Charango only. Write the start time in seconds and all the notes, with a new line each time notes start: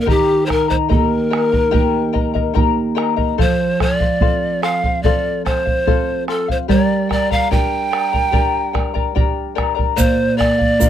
0.06 G4 A#4 D#5 G5 A#5
0.47 A#4 D#5 G5 A#5
0.68 A#4 D#5 A#5
0.89 A#4 D#5 G5 A#5
1.30 A#4 D#5 G5 A#5
1.52 A#4 D#5 A#5
1.71 G4 A#4 D#5 G5 A#5
2.13 A#4 D#5 G5 A#5
2.34 A#4 D#5 A#5
2.54 A#4 D#5 G5 A#5
2.95 A#4 D#5 G5 A#5
3.16 A#4 D#5 A#5
3.38 A4 C5 F5
3.80 A4 C5 F5
4.00 C5 F5
4.21 A4 C5 F5
4.62 A4 C5 F5
4.83 C5 F5
5.04 A4 C5 F5
5.45 A4 C5 F5
5.66 C5 F5
5.87 A4 C5 F5
6.28 A4 C5 F5
6.48 C5 F5
6.68 G4 A#4 D5 G5 A#5
7.09 A#4 D5 G5 A#5
7.30 A#4 D5 A#5
7.50 A#4 D5 G5 A#5
7.91 A#4 D5 G5 A#5
8.13 A#4 D5 A#5
8.32 G4 A#4 D5 G5 A#5
8.73 A#4 D5 G5 A#5
8.94 A#4 D5 A#5
9.15 A#4 D5 G5 A#5
9.55 A#4 D5 G5 A#5
9.75 A#4 D5 A#5
9.96 A#4 D5 F5
10.37 A#4 D5 F5
10.58 D5 F5
10.79 A#4 D5 F5